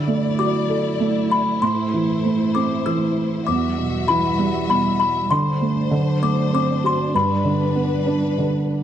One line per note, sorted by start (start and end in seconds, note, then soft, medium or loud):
0.00 1.58 D3 medium
0.00 1.60 F#3 medium
0.00 3.44 E4 medium
0.00 1.60 D5 medium
0.00 0.40 E6 loud
0.07 0.98 A3 medium
0.39 1.58 F#4 medium
0.39 1.34 D6 medium
0.69 1.59 A4 soft
1.00 1.60 A3 medium
1.31 1.63 B5 medium
1.62 3.43 A2 medium
1.62 3.45 A3 medium
1.62 3.46 C5 medium
1.62 2.51 C6 medium
1.94 2.85 E3 medium
2.24 3.44 A3 soft
2.55 3.45 C4 soft
2.55 2.87 D6 medium
2.86 3.46 E3 medium
2.86 3.49 E6 medium
3.47 5.27 E2 medium
3.47 5.89 G3 medium
3.47 5.29 F#4 medium
3.47 5.29 E5 medium
3.47 4.04 D6 medium
3.78 4.68 B2 medium
4.08 5.27 E3 medium
4.08 4.65 B5 medium
4.39 5.28 G3 soft
4.69 5.29 B2 medium
4.69 4.98 B5 medium
5.00 5.31 B5 medium
5.30 5.90 D3 medium
5.30 8.83 D4 medium
5.30 7.12 C5 medium
5.30 6.25 C6 medium
5.61 5.91 A3 soft
5.91 7.10 D3 medium
5.91 7.13 F#3 medium
6.22 7.12 A3 soft
6.22 6.53 D6 medium
6.53 7.13 C4 medium
6.53 6.68 D6 medium
6.84 7.13 F#4 medium
6.84 7.16 C6 medium
7.13 8.83 G2 medium
7.13 8.83 G3 medium
7.13 8.83 B4 medium
7.13 8.35 B5 medium
7.45 8.37 D3 medium
7.76 8.83 B3 medium
8.06 8.83 D4 medium
8.38 8.83 D3 medium